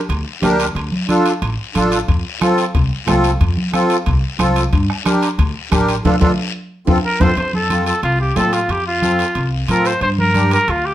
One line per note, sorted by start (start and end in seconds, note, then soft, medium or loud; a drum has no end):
0.09 0.23 D2 medium
0.09 high timbale medium
0.09 long guiro medium
0.42 0.70 D2 medium
0.42 0.66 D4 medium
0.42 0.66 G4 medium
0.42 0.66 A#4 medium
0.42 high conga medium
0.42 high timbale medium
0.42 low timbale medium
0.42 short guiro medium
0.60 high timbale medium
0.60 short guiro medium
0.75 0.89 D2 medium
0.75 high timbale medium
0.75 long guiro medium
0.92 high conga medium
1.09 1.32 D4 medium
1.09 1.32 F4 medium
1.09 1.32 A4 medium
1.09 high conga medium
1.09 high timbale medium
1.09 short guiro medium
1.26 high timbale medium
1.26 short guiro medium
1.42 1.55 A1 medium
1.42 high timbale medium
1.42 long guiro medium
1.75 2.02 A1 medium
1.75 1.98 D4 medium
1.75 1.99 F4 medium
1.75 1.99 A4 medium
1.75 high conga medium
1.75 high timbale medium
1.75 short guiro medium
1.92 high timbale medium
1.92 short guiro medium
2.08 2.22 F2 medium
2.08 bombo low medium
2.08 high timbale medium
2.08 long guiro medium
2.41 2.64 C4 medium
2.41 2.65 F4 medium
2.41 2.65 A4 medium
2.41 bombo rim medium
2.41 high conga medium
2.41 high timbale medium
2.41 short guiro medium
2.58 high timbale medium
2.58 short guiro medium
2.75 2.88 C2 medium
2.75 bombo low medium
2.75 high timbale medium
2.75 long guiro medium
3.07 3.34 C2 medium
3.07 3.30 C4 medium
3.07 3.31 F4 medium
3.07 3.31 A4 medium
3.07 bombo rim medium
3.07 high conga medium
3.07 high timbale medium
3.07 low timbale medium
3.07 short guiro medium
3.24 high timbale medium
3.24 short guiro medium
3.41 3.54 F2 medium
3.41 bombo low medium
3.41 high timbale medium
3.41 long guiro medium
3.57 high conga medium
3.73 3.96 C4 medium
3.73 3.97 F4 medium
3.73 3.97 A4 medium
3.73 bombo rim medium
3.73 high conga medium
3.73 high timbale medium
3.73 short guiro medium
3.90 high timbale medium
3.90 short guiro medium
4.06 4.20 C2 medium
4.06 bombo low medium
4.06 high timbale medium
4.06 long guiro medium
4.39 4.66 C2 medium
4.39 4.63 C4 medium
4.39 4.63 F4 medium
4.39 4.63 A4 medium
4.39 bombo rim medium
4.39 high conga medium
4.39 high timbale medium
4.39 short guiro medium
4.56 high timbale medium
4.56 short guiro medium
4.73 4.86 G2 medium
4.73 bombo low medium
4.73 high timbale medium
4.73 long guiro medium
4.90 bombo rim medium
5.05 5.29 D4 medium
5.05 5.29 G4 medium
5.05 5.29 A#4 medium
5.05 bombo rim medium
5.05 high conga medium
5.05 high timbale medium
5.05 short guiro medium
5.23 high timbale medium
5.23 short guiro medium
5.38 5.52 D2 medium
5.38 bombo low medium
5.38 high timbale medium
5.38 long guiro medium
5.72 5.98 A1 medium
5.72 5.95 D4 medium
5.72 5.95 G4 medium
5.72 5.95 A#4 medium
5.72 bombo low medium
5.72 bombo rim medium
5.72 high conga medium
5.72 high timbale medium
5.72 short guiro medium
5.89 high timbale medium
5.89 short guiro medium
6.05 6.17 D2 medium
6.05 6.16 D4 medium
6.05 6.16 F4 medium
6.05 6.16 A4 medium
6.05 bombo low medium
6.05 high conga loud
6.05 high timbale medium
6.05 long guiro loud
6.21 6.34 D2 medium
6.21 6.32 D4 medium
6.21 6.32 F4 medium
6.21 6.32 A4 loud
6.21 bombo low loud
6.21 high conga loud
6.21 high timbale loud
6.21 long guiro medium
6.87 7.00 F2 medium
6.87 6.98 C4 medium
6.87 6.98 F4 medium
6.87 6.98 A4 medium
6.87 bombo low medium
6.87 high conga medium
6.87 high timbale medium
6.87 long guiro medium
7.05 7.22 A#4 medium
7.20 7.33 F2 medium
7.20 7.32 C4 medium
7.20 7.32 F4 medium
7.20 7.32 A4 medium
7.20 7.37 C5 medium
7.20 bombo low medium
7.20 high conga loud
7.20 high timbale loud
7.37 7.90 F2 medium
7.37 7.53 C5 medium
7.37 high timbale medium
7.37 long guiro medium
7.53 7.85 A4 medium
7.53 high conga medium
7.70 7.93 C4 medium
7.70 7.93 F4 medium
7.70 7.94 A4 medium
7.70 high conga medium
7.70 high timbale medium
7.70 short guiro medium
7.86 8.02 A4 medium
7.86 high timbale medium
7.86 short guiro medium
8.03 8.29 C2 medium
8.03 8.19 F4 medium
8.03 high timbale medium
8.03 long guiro medium
8.20 8.38 G4 medium
8.35 8.63 A2 medium
8.35 8.59 C4 medium
8.35 8.59 F4 medium
8.35 8.59 A4 medium
8.35 8.55 A4 medium
8.35 high conga medium
8.35 high timbale medium
8.35 low timbale medium
8.35 short guiro medium
8.53 8.72 F4 medium
8.53 high timbale medium
8.53 short guiro medium
8.69 9.22 F2 medium
8.69 8.87 G4 medium
8.69 high timbale medium
8.69 long guiro medium
8.87 9.49 F4 medium
9.02 9.25 C4 medium
9.02 9.25 F4 medium
9.02 9.26 A4 medium
9.02 high conga medium
9.02 high timbale medium
9.02 short guiro medium
9.19 high timbale medium
9.19 short guiro medium
9.35 9.62 C2 medium
9.35 high timbale medium
9.35 long guiro medium
9.68 9.95 A2 medium
9.68 9.92 C4 medium
9.68 9.92 F4 medium
9.68 9.92 A4 medium
9.68 9.88 A#4 medium
9.68 high conga medium
9.68 high timbale medium
9.68 short guiro medium
9.85 10.02 C5 medium
9.85 high timbale medium
9.85 short guiro medium
10.01 10.54 G2 medium
10.01 10.10 C5 medium
10.01 high timbale medium
10.01 long guiro medium
10.19 10.50 A#4 medium
10.19 high conga medium
10.34 10.58 D4 medium
10.34 10.58 G4 medium
10.34 10.58 A#4 medium
10.34 high conga medium
10.34 high timbale medium
10.34 short guiro medium
10.51 10.71 A#4 medium
10.51 high timbale medium
10.51 short guiro medium
10.68 10.94 D2 medium
10.68 10.87 F4 medium
10.68 high timbale medium
10.68 long guiro medium
10.85 10.94 G4 medium